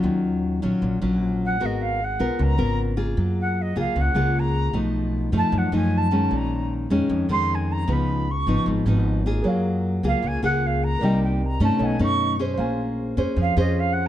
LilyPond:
<<
  \new Staff \with { instrumentName = "Flute" } { \time 4/4 \key ges \lydian \tempo 4 = 153 r2. r8 ges''8 | ees''8 f''8 ges''4 bes''4 r4 | r8 ges''8 ees''8 f''8 ges''4 bes''4 | r4. a''8 ges''8 aes''8 a''4 |
bes''4 r4. c'''8 aes''8 bes''8 | ces'''4 des'''4 r2 | r4. f''8 aes''8 ges''8 f''8 bes''8~ | bes''8 g''8 bes''8 a''8 aes''8 des'''4 r8 |
r2 f''8 ees''8 \tuplet 3/2 { f''8 ges''8 r8 } | }
  \new Staff \with { instrumentName = "Grand piano" } { \time 4/4 \key ges \lydian r1 | r1 | r1 | r1 |
r1 | r1 | <aes' bes' des'' f''>1 | <bes' d'' ees'' g''>2 <a' des'' ees'' ges''>2 |
<c'' f'' aes''>1 | }
  \new Staff \with { instrumentName = "Nylon-string guitar" } { \time 4/4 \key ges \lydian << { <ges des' f'>4. <ges des' f'>4 <ges des' f'>4. | <ces' ges' bes'>4 r8 <ces' f' bes'>4 <ces' f' bes'>4 <bes f' aes'>8~ | <bes f' aes'>4. <bes f' aes'>4 <bes f' aes'>4. | <f a ees'>4. <f a ees'>4 <f a ees'>4 <ees aes des'>8~ |
<ees aes des'>4. <ees aes des'>4 <ees aes des'>4. | <f ces' ees'>4 r8 <f ces' ees'>4 <f ces' ees'>4 <bes f' aes'>8~ | <bes f' aes'>4. <bes f' aes'>4 <bes f' aes'>4. | <g bes ees'>4 r8 <a des' ees'>4 <a des' ees'>4 <des' aes' c''>8~ |
<des' aes' c''>4. <des' aes' c''>4 <des' aes' c''>4. | } \\ { ees2 bes,2 | aes2 des2 | ges2 des2 | ces2 ges,2 |
bes,2 f,2 | des2 aes,2 | ges2 des2 | c2 ces2 |
bes2 f2 | } >> }
  \new Staff \with { instrumentName = "Upright bass" } { \clef bass \time 4/4 \key ges \lydian ees,4. bes,,16 r16 bes,,8 bes,,4. | aes,,4. ces,16 r16 des,8 aes,,4. | ges,4. des,16 r16 des,8 des,4. | ces,4. ges,16 r16 ges,8 ges,4. |
bes,,4. f,16 r16 f,8 f,4. | des,4. aes,,16 r16 aes,,8 aes,,4. | ges,4. des,16 r16 des,8 des,4. | c,4. g,16 r16 ces,8 ges,4. |
bes,,4. f,16 r16 f,8 f,4. | }
>>